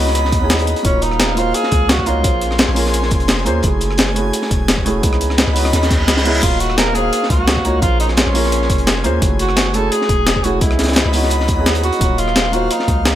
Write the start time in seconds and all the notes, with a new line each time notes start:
Already playing: C#2 B3 C#4 D#4 G#4 D#5 B5
0.00 E4 F#4
0.07 snare
0.15 closed hi-hat
0.25 snare
0.32 D#2, kick, closed hi-hat
0.40 B3 C#4 D#4 E4
0.44 G#4
0.50 snare, closed hi-hat
0.59 closed hi-hat
0.67 closed hi-hat
0.76 closed hi-hat
0.83 D#1 A#3 C#4 D#4 F4 F#4 F5, kick, closed hi-hat
0.87 C#5
1.02 D#4, closed hi-hat
1.12 cross-stick
1.20 snare, closed hi-hat
1.35 A#3 D#4 F4 F#4, closed hi-hat
1.39 C5
1.54 G#4, closed hi-hat
1.63 snare
1.71 C#2, kick, closed hi-hat
1.89 F#4, snare, closed hi-hat
1.99 kick
2.06 A#3 D#4 F4 F#4 C#5, closed hi-hat
2.22 A#1 A#3 C#4 F4 G#4 G#5 C6, kick, closed hi-hat
2.27 C5
2.41 closed hi-hat
2.51 cross-stick, snare
2.58 snare, closed hi-hat
2.69 A#1
2.74 A#3 C#4 F4 G#4, closed hi-hat, open hi-hat
2.79 A#4
2.86 snare
2.93 closed hi-hat
3.03 snare
3.11 F1, kick, closed hi-hat
3.20 closed hi-hat
3.28 snare, closed hi-hat
3.38 snare
3.45 D#2 A#3 C#4 F4 G#4 C5, closed hi-hat
3.61 F#1 A3 C#4 E4 F#4 G#5, kick, closed hi-hat
3.66 G#4
3.81 closed hi-hat
3.91 cross-stick
3.98 snare, closed hi-hat
4.14 A3 C#4 E4 F#4, closed hi-hat
4.18 G#4
4.33 closed hi-hat
4.42 snare
4.51 E1, kick, closed hi-hat
4.68 snare, closed hi-hat
4.78 kick
4.85 A3 C#4 E4 F#4 G#4, closed hi-hat
5.01 C#2 B3 C#4 D#4 E4 D#5 B5, kick, closed hi-hat
5.06 G#4
5.13 cross-stick
5.21 closed hi-hat
5.30 cross-stick, snare
5.38 snare, closed hi-hat
5.48 C#2
5.53 B3 C#4 D#4 E4, closed hi-hat, open hi-hat
5.58 F#4
5.65 cross-stick, snare
5.73 D#2, snare, closed hi-hat, reverse cymbal
5.83 snare, closed hi-hat
5.90 kick, snare, closed hi-hat
6.08 C#2, snare, closed hi-hat
6.17 snare, closed hi-hat
6.25 B3 C#4 D#4 E4 G#4, closed hi-hat
6.34 closed hi-hat
6.41 D#1 A#3 D#4 F4 F#4 F5, kick, closed hi-hat, crash
6.46 C#5
6.60 F#4, closed hi-hat
6.70 cross-stick
6.78 A#4, snare, closed hi-hat
6.93 A#3 D#4 F#4 G#4 F5, closed hi-hat
6.98 C5
7.13 closed hi-hat
7.23 snare
7.30 C#2 F#4, kick, closed hi-hat
7.48 snare, closed hi-hat
7.57 kick
7.64 A#3 D#4 F4 F#4 C#5, closed hi-hat
7.80 A#1 A#3 C#4 F4 G#4 G#5 C6, kick, closed hi-hat
7.85 C5
8.00 D#4, closed hi-hat
8.08 cross-stick, snare
8.17 C#4, snare, closed hi-hat
8.27 A#1
8.33 A#3 C#4 F4 G#4, closed hi-hat, open hi-hat
8.37 A#4
8.44 snare
8.52 closed hi-hat
8.62 snare
8.70 F1, kick, closed hi-hat
8.78 closed hi-hat
8.87 snare, closed hi-hat
8.96 snare
9.04 D#2 A#3 C#4 F4 G#4 C5, closed hi-hat
9.20 F#1 A3 C#4 E4 F#4, kick, closed hi-hat
9.24 G#4
9.39 F#4, closed hi-hat
9.49 cross-stick
9.56 snare, closed hi-hat
9.72 A3 C#4 E4 F#4 A4, closed hi-hat
9.77 G#4
9.92 G#4, closed hi-hat
10.01 snare
10.09 E1, kick, closed hi-hat
10.27 snare, closed hi-hat
10.36 kick
10.43 A3 C#4 E4 F#4 G#4, closed hi-hat
10.59 C#2 B3 C#4 E4 D#5 B5, kick, closed hi-hat
10.64 G#4
10.71 cross-stick
10.79 snare, closed hi-hat
10.84 snare, closed hi-hat
10.88 cross-stick, snare, closed hi-hat
10.92 snare, closed hi-hat
10.96 snare, closed hi-hat
11.06 C#2
11.12 B3 C#4 D#4 E4, closed hi-hat, open hi-hat
11.16 F#4
11.23 snare
11.30 closed hi-hat
11.40 snare
11.48 D#2, kick, closed hi-hat
11.56 B3 C#4 D#4 E4
11.60 G#4
11.66 snare, closed hi-hat
11.75 closed hi-hat
11.84 F#4, closed hi-hat
11.93 closed hi-hat
11.99 D#1 F#3 A#3 D#4 F4 F5, kick, closed hi-hat
12.03 C#5
12.18 F4, closed hi-hat
12.28 cross-stick
12.36 snare, closed hi-hat
12.51 A#3 D#4 F4 F#4, closed hi-hat
12.56 C5
12.71 D#4, closed hi-hat
12.79 snare
12.88 C#2, kick, closed hi-hat
13.05 snare, closed hi-hat